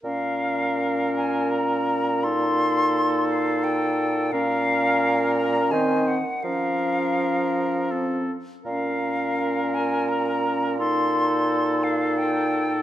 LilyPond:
<<
  \new Staff \with { instrumentName = "Flute" } { \time 3/4 \key bes \minor \tempo 4 = 84 f''4. aes''8 bes''4 | c'''4. f''8 g''4 | f''4. bes''8 aes''8 ges''8 | f''2 r4 |
f''4. aes''8 bes''4 | c'''4. f''8 g''4 | }
  \new Staff \with { instrumentName = "Oboe" } { \time 3/4 \key bes \minor bes'2. | a'2. | bes'2 c''8 r8 | bes'2 a'8 r8 |
bes'2. | a'2. | }
  \new Staff \with { instrumentName = "Clarinet" } { \time 3/4 \key bes \minor des'2. | ees'2. | des'2 c'8 r8 | des'2 c'8 r8 |
des'2. | ees'2. | }
  \new Staff \with { instrumentName = "Bassoon" } { \clef bass \time 3/4 \key bes \minor bes,2.~ | bes,2. | bes,2 ees8 r8 | f2~ f8 r8 |
bes,2.~ | bes,2. | }
>>